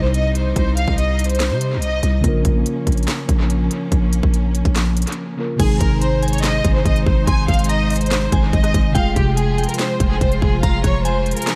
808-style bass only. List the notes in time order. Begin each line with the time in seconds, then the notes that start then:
Already playing: C2
0.56 C2
0.88 C2
1.51 C3
1.77 C2
2.03 C2
2.24 A#1
2.45 A#1
2.87 A#1
3.29 A#1
3.92 A#1
4.23 A#1
4.65 A#1
5.60 G#1
5.81 G#1
6.65 G#1
6.85 G#1
7.07 G#1
7.27 G#1
7.48 G#1
8.32 G#1
8.53 G#1
8.74 G#1
8.95 F1
9.16 F1
10.00 F1
10.21 F1
10.42 F1
10.63 F1
10.84 F1